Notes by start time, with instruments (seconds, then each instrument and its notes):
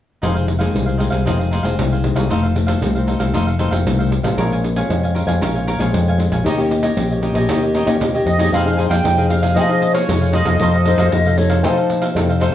0.22 fingered electric bass F1, nylon-string guitar F2 D#3 G#3 C4, cavaquinho D#4 G#4 C5 F5, pandeiro
0.35 cavaquinho G#4 C5 F5, pandeiro
0.47 muted cavaquinho stroke, pandeiro
0.59 nylon-string guitar D#3 G#3 C4, cavaquinho G#4 C5 F5, pandeiro
0.74 fingered electric bass C2, nylon-string guitar C3, pandeiro
0.86 cavaquinho G#4 C5 F5, pandeiro
0.97 nylon-string guitar D#3 G#3 C4, cavaquinho D#4 G#4 C5 F5, pandeiro
1.10 fingered electric bass C2, cavaquinho G#4 C5 F5, pandeiro
1.25 fingered electric bass F1, nylon-string guitar F2 D#3 G#3 C4, cavaquinho D#4 G#4 C5 F5, pandeiro
1.39 cavaquinho G#4 C5 F5, pandeiro
1.51 cavaquinho D#4 G#4 C5 F5, pandeiro
1.63 fingered electric bass F1, nylon-string guitar D#3 G#3 C4, cavaquinho G#4 C5 F5, pandeiro
1.78 fingered electric bass C2, nylon-string guitar C3, pandeiro
1.92 cavaquinho G#4 C5 F5, pandeiro
2.04 nylon-string guitar D#3 G#3 C4, muted cavaquinho stroke, pandeiro
2.15 fingered electric bass C2, cavaquinho G#4 C5 F5, pandeiro
2.29 fingered electric bass F1, nylon-string guitar F2 D#3 A3 C4, cavaquinho D#4 A4 C5 F5, pandeiro
2.43 cavaquinho A4 C5 F5, pandeiro
2.56 nylon-string guitar D#3 A3 C4, muted cavaquinho stroke, pandeiro
2.67 cavaquinho A4 C5 F5, pandeiro
2.82 fingered electric bass C2, nylon-string guitar C3 D#3 A3 C4, pandeiro
2.95 nylon-string guitar D#3 A3 C4, cavaquinho A4 C5 F5, pandeiro
3.07 cavaquinho D#4 A4 C5 F5, pandeiro
3.20 fingered electric bass C2, cavaquinho A4 C5 F5, pandeiro
3.34 fingered electric bass F1, nylon-string guitar F2 D#3 A3 C4, cavaquinho D#4 A4 C5 F5, pandeiro
3.47 cavaquinho A4 C5 F5, pandeiro
3.59 nylon-string guitar D#3 A3 C4, cavaquinho D#4 A4 C5 F5, pandeiro
3.71 fingered electric bass F1, cavaquinho A4 C5 F5, pandeiro
3.85 fingered electric bass C2, nylon-string guitar C3 D#3 A3 C4, pandeiro
3.99 cavaquinho A4 C5 F5, pandeiro
4.11 muted cavaquinho stroke, pandeiro
4.23 fingered electric bass A1, nylon-string guitar G#3 C#4 F4, cavaquinho A4 C5 F5, pandeiro
4.37 fingered electric bass A#1, nylon-string guitar A#2, cavaquinho A#4 C#5 F5 G#5, pandeiro
4.52 cavaquinho C#5 F5 G#5, pandeiro
4.64 muted cavaquinho stroke, pandeiro
4.76 nylon-string guitar G#3 C#4 F4, cavaquinho C#5 F5 G#5, pandeiro
4.89 fingered electric bass F2, nylon-string guitar F2, pandeiro
5.03 cavaquinho C#5 F5 G#5, pandeiro
5.15 nylon-string guitar G#3 C#4 F4, cavaquinho A#4 C#5 F5 G#5, pandeiro
5.27 fingered electric bass F2, cavaquinho C#5 F5 G#5, pandeiro
5.41 fingered electric bass A#1, nylon-string guitar A#2 G#3 C#4 F4, cavaquinho A#4 C#5 F5 G#5, pandeiro
5.55 cavaquinho C#5 F5 G#5, pandeiro
5.67 cavaquinho A#4 C#5 F5 G#5, pandeiro
5.79 fingered electric bass A#1, nylon-string guitar G#3 C#4 F4, cavaquinho F5 G#5, pandeiro
5.83 cavaquinho C#5
5.93 nylon-string guitar F2, fingered electric bass F2, pandeiro
6.07 cavaquinho C#5 F5 G#5, pandeiro
6.18 nylon-string guitar G#3 C#4 F4, muted cavaquinho stroke, pandeiro
6.30 fingered electric bass A#1, cavaquinho C#5 F5 G#5, pandeiro
6.44 fingered electric bass D#2, nylon-string guitar D#3 A#3 C#4 G4, cavaquinho D#4 G4 C#5, pandeiro
6.48 cavaquinho D#5
6.57 nylon-string guitar A#3 C#4 G4, cavaquinho C#5 D#5, pandeiro
6.61 cavaquinho G4
6.71 muted cavaquinho stroke, pandeiro
6.83 cavaquinho G4 C#5 D#5, pandeiro
6.96 fingered electric bass A#1, nylon-string guitar A#2 A#3 C#4 G4, pandeiro
7.10 cavaquinho G4 C#5 D#5, pandeiro
7.22 nylon-string guitar A#3 C#4 G4, cavaquinho D#4 G4 C#5 D#5, pandeiro
7.34 fingered electric bass A#1, cavaquinho G4 C#5 D#5, pandeiro
7.49 fingered electric bass D#2, nylon-string guitar D#3 A#3 C#4 G4, cavaquinho D#4 G4 C#5 D#5, pandeiro
7.63 cavaquinho G4 C#5 D#5, pandeiro
7.75 cavaquinho D#4 G4 C#5 D#5, pandeiro
7.86 fingered electric bass D#2, nylon-string guitar A#3 C#4 G4, cavaquinho G4 C#5 D#5, pandeiro
8.00 fingered electric bass D#2, nylon-string guitar A#2, pandeiro
8.13 nylon-string guitar A#3 C#4 G4, cavaquinho G4 C#5 D#5, pandeiro
8.26 fingered electric bass F2, accordion D#5, muted cavaquinho stroke, pandeiro
8.38 nylon-string guitar C4 D#4 G#4, cavaquinho G4 C#5 D#5, pandeiro
8.52 fingered electric bass F2, nylon-string guitar F3, cavaquinho D#4 G#4 C5 F5, accordion F5, pandeiro
8.65 nylon-string guitar C4 D#4 G#4, cavaquinho G#4 C5 F5, pandeiro
8.77 nylon-string guitar C4 D#4 G#4, cavaquinho D#4 G#4 C5 F5, accordion G#5, pandeiro
8.89 fingered electric bass F2, cavaquinho G#4 C5 F5, accordion G5, pandeiro
9.04 fingered electric bass F2, nylon-string guitar C3, pandeiro
9.17 nylon-string guitar C4 D#4 G#4, cavaquinho G#4 C5 F5, pandeiro
9.29 accordion F5, muted cavaquinho stroke, pandeiro
9.42 cavaquinho G#4 C5 F5, pandeiro
9.55 nylon-string guitar F3 C4 D#4 G#4, fingered electric bass F3, cavaquinho D#4 G#4 C5 F5, accordion D#5, pandeiro
9.69 nylon-string guitar C4 D#4 G#4, cavaquinho G#4 C5 F5, pandeiro
9.82 muted cavaquinho stroke, pandeiro
9.93 cavaquinho G#4 C5 F5, accordion C#5, pandeiro
10.09 fingered electric bass F2, nylon-string guitar C3 C4 D#4 G#4, pandeiro
10.21 cavaquinho G#4 C5 F5, pandeiro
10.33 cavaquinho D#4 G#4 C5 F5, accordion D#5, pandeiro
10.45 fingered electric bass F2, nylon-string guitar C4 D#4 A4, cavaquinho G#4 C5 F5, pandeiro
10.59 fingered electric bass F2, nylon-string guitar F3, cavaquinho D#4 A4 C5 F5, pandeiro
10.73 cavaquinho A4 C5 F5, pandeiro
10.85 nylon-string guitar C4 D#4 A4, cavaquinho D#4 A4 C5 F5, flute C5, pandeiro
10.98 fingered electric bass F2, cavaquinho A4 C5 F5, pandeiro
11.12 fingered electric bass F2, nylon-string guitar C3, flute D#5, pandeiro
11.25 nylon-string guitar C4 D#4 A4, cavaquinho A4 C5 F5, pandeiro
11.38 nylon-string guitar C4 D#4 A4, flute C#5, muted cavaquinho stroke, pandeiro
11.50 cavaquinho A4 C5 F5, pandeiro
11.63 fingered electric bass F3, nylon-string guitar F3 C4 D#4 A4, cavaquinho D#4 A4 C5 F5, flute C5, pandeiro
11.77 cavaquinho A4 C5 F5, pandeiro
11.89 muted cavaquinho stroke, pandeiro
12.02 cavaquinho A4 C5 F5, pandeiro
12.15 fingered electric bass F2, nylon-string guitar C3 C4 D#4 A4, pandeiro
12.29 cavaquinho A4 C5 F5, pandeiro
12.40 cavaquinho D#4 A4 C5 F5, accordion C5, pandeiro